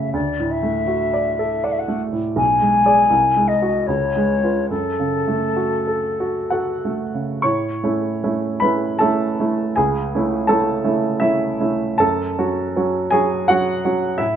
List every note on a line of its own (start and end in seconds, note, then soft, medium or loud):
0.00 0.10 F#2 soft
0.00 0.17 C#3 soft
0.00 0.17 A3 soft
0.00 0.17 F#4 soft
0.00 0.17 A4 soft
0.00 0.17 C#5 soft
0.00 0.13 E5 soft
0.13 2.32 D2 soft
0.13 0.53 D5 soft
0.39 0.79 A2 soft
0.51 1.65 E5 soft
0.63 1.03 A3 soft
0.87 1.28 F#4 soft
1.14 1.54 D5 soft
1.39 1.79 A4 soft
1.64 2.03 D5 soft
1.64 1.74 F#5 soft
1.72 1.81 E5 soft
1.79 2.02 F#5 soft
1.88 2.27 A3 soft
2.13 2.37 A2 soft
2.36 3.08 B1 soft
2.36 3.49 G#5 medium
2.60 3.00 G#3 soft
2.86 3.08 G#4 soft
2.86 3.08 D5 soft
3.10 3.85 C2 soft
3.36 3.77 G#3 soft
3.48 3.88 D#5 soft
3.62 3.85 F#4 soft
3.62 3.86 D#5 soft
3.87 4.68 C#2 soft
3.87 4.69 C#5 soft
4.16 4.59 G#3 soft
4.43 4.68 F4 soft
4.43 4.68 B4 soft
4.70 7.41 F#2 soft
4.70 6.95 A4 soft
5.00 5.45 C#3 soft
5.28 5.75 A3 soft
5.56 6.06 F#4 soft
5.87 6.39 A4 soft
6.20 6.50 F#4 soft
6.50 7.40 F#4 soft
6.50 7.03 A4 soft
6.50 7.44 F#5 soft
6.85 7.34 A3 soft
7.14 7.44 C#3 soft
7.42 7.83 A2 soft
7.42 8.58 C#5 soft
7.42 8.61 C#6 medium
7.84 8.19 A3 soft
7.84 8.19 C#4 soft
7.84 8.20 E4 soft
8.24 8.59 A3 soft
8.24 8.58 C#4 soft
8.24 8.59 E4 soft
8.60 8.97 A3 soft
8.60 8.97 C#4 soft
8.60 8.97 E4 soft
8.60 8.98 B4 soft
8.60 9.00 B5 medium
8.99 9.36 A3 soft
8.99 9.36 C#4 soft
8.99 9.36 E4 soft
8.99 9.73 A4 soft
8.99 9.76 A5 medium
9.40 9.74 A3 soft
9.40 9.74 C#4 soft
9.40 9.74 E4 soft
9.76 10.13 C#2 soft
9.76 10.46 G#4 soft
9.76 10.50 G#5 soft
10.15 10.47 A3 soft
10.15 10.48 C#4 soft
10.15 10.48 E4 soft
10.47 10.82 A3 soft
10.47 10.82 C#4 soft
10.47 10.82 E4 soft
10.47 11.18 A4 soft
10.47 11.21 A5 medium
10.84 11.18 A3 soft
10.84 11.18 C#4 soft
10.84 11.18 E4 soft
11.20 11.57 A3 soft
11.20 11.57 C#4 soft
11.20 11.60 E4 soft
11.20 12.00 E5 medium
11.61 11.97 A3 soft
11.61 11.98 C#4 soft
11.61 11.98 E4 soft
11.98 12.38 F#2 soft
11.98 13.09 A4 soft
11.98 13.12 A5 medium
12.38 12.73 F#3 soft
12.38 12.73 C#4 soft
12.38 12.73 F#4 soft
12.76 13.10 F#3 soft
12.76 13.10 C#4 soft
12.76 13.10 F#4 soft
13.11 13.45 F#3 soft
13.11 13.46 C#4 soft
13.11 13.46 F#4 soft
13.11 13.46 G#4 soft
13.11 13.48 G#5 medium
13.48 13.82 F#3 soft
13.48 13.82 C#4 soft
13.48 13.84 F#4 soft
13.48 14.20 F#5 medium
13.85 14.17 F#3 soft
13.85 14.17 C#4 soft
13.85 14.17 F#4 soft
14.18 14.36 A2 soft
14.18 14.36 E4 soft
14.18 14.36 E5 medium